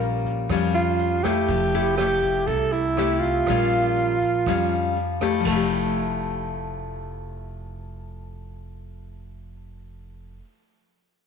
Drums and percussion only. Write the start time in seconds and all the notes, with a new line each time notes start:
0.01 closed hi-hat
0.25 kick, closed hi-hat
0.49 kick, cross-stick, closed hi-hat
0.75 closed hi-hat
0.99 closed hi-hat
1.24 kick, cross-stick, closed hi-hat
1.49 kick, closed hi-hat
1.74 closed hi-hat
1.98 cross-stick, closed hi-hat
2.23 kick, closed hi-hat
2.48 kick, closed hi-hat
2.72 closed hi-hat
2.97 cross-stick, closed hi-hat
3.22 kick, closed hi-hat
3.47 kick, cross-stick, closed hi-hat
3.72 closed hi-hat
3.96 closed hi-hat
4.22 kick, closed hi-hat
4.46 kick, cross-stick, closed hi-hat
4.72 closed hi-hat
4.96 closed hi-hat
5.21 kick, cross-stick, closed hi-hat
5.45 kick, crash